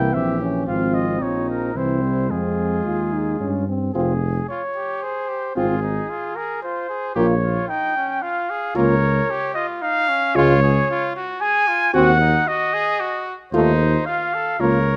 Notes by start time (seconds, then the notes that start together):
Already playing: C2 E3 A#3 E4 G5
0.13 A#1 C4 G4 E5
0.41 C#4
0.66 G#1 F3 C4 F4 F5
0.94 D#5
1.19 A#1 F3 D#4 C#5
1.50 A#4
1.75 C2 E3 C4 E4 C5
2.02 G3
2.29 F2 G#3 C4 F4 G#4
2.85 D#2 F4
3.13 D#4
3.40 G2 C#4
3.68 C4
3.94 F1 C4 F4 G#4
4.49 F4 C#5
4.75 G4
5.03 G#4 C5
5.28 G4
5.55 G#1 C4 F4 G#4
5.83 D#4
6.09 F4
6.35 G#4 A#4
6.63 F4 C5
6.89 G#4
7.15 A#1 A#3 F4 G4 C#5
7.43 F4
7.68 D#4 G5
7.97 C#4
8.22 F4 F5
8.50 G#4
8.75 C#2 A#3 F4 A#4 C#5
9.30 G4
9.54 F4 D#5
9.82 D#4 F5
10.09 C#4
10.35 C#2 G#3 F4 C#5
10.63 G#4
10.90 F4
11.16 F#4
11.41 G#4 G#5
11.68 F4
11.93 D#2 C4 F#4 F#5
12.21 D#4
12.47 F#4 D#5
12.74 G#4
13.00 F#4
13.53 D#2 A3 D#4 F4 C5
14.06 F4 F5
14.34 A4
14.60 C#2 A#3 F4 A#4 C#5